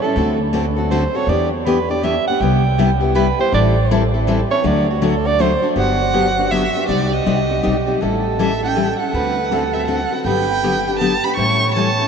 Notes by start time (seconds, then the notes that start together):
0.02 C#4 E4 A4
0.16 D2 D3 A3 C4 F#4 A4
0.53 D3 A3 C4 F#4 A4
0.76 C4 F#4 A4
0.91 D3 A3 C4 F#4 A4 C5
1.15 C4 F#4 A4 C#5
1.27 E2 E3 B3 D4 G4 D5
1.52 F#4
1.65 E3 B3 D4 G4 B4
1.89 B3 D4 G4 D5
2.03 E3 B3 D4 G4 E5
2.27 B3 D4 G4 F#5
2.41 C2 C3 G3 B3 E4 G4 G5
2.78 C3 G3 B3 E4 G4
3.00 B3 E4 G4
3.15 C3 G3 B3 E4 G4 B4
3.39 B3 E4 G4 C5
3.52 A1 E3 G3 C4 E4 A4 D5
3.91 E3 G3 C4 E4 A4
4.14 C4 E4 A4
4.27 E3 G3 C4 E4 A4
4.50 C4 E4 A4 C#5
4.63 D2 D3 F#3 A3 D4 F#4 D5
4.90 F#4
5.02 D3 F#3 A3 D4 F#4 A4
5.25 A3 D4 F#4 D5
5.39 D3 F#3 A3 D4 F#4 C5
5.62 A3 D4 F#4
5.76 G1 D3 F#3 B3 D4 F#4 G4 F#5
6.13 D3 F#3 B3 D4 G4
6.37 B3 D4 G4
6.51 D3 F#3 B3 D4 G4 E5
6.75 B3 D4 G4
6.88 C2 C3 G3 C4 D#4 G4 D5
7.13 D#5
7.26 C2 C3 G3 C4 D#4 G4 D5
7.49 C4 D#4 G4 D5
7.63 B1 C3 G3 C4 D#4 G4 D5
7.86 C4 D#4 G4 D5
8.01 A1 E3 G3 C#4 E4 A4
8.39 E3 G3 C#4 E4 A4 E5
8.62 C#4 E4 A4 G5
8.76 E3 G3 C#4 E4 A4
8.99 C#4 E4 A4 F#5
9.13 D2 D3 A3 C4 F#4 A4 B4
9.51 D3 A3 C4 F#4 A4
9.73 C4 F#4 A4 E5
9.87 D3 A3 C4 F#4 A4 F#5
10.12 C4 F#4 A4
10.25 G1 D3 F#3 B3 D4 G4 B4 G5
10.64 D3 F#3 B3 D4 G4
10.87 B3 D4 G4
10.99 D3 F#3 B3 D4 G4 A5
11.24 B3 D4 G4 B5
11.36 A1 E3 G3 C#4 E4 A4 C#5 C#6
11.75 E3 G3 C#4 E4 A4 A5
11.99 C#4 E4 A4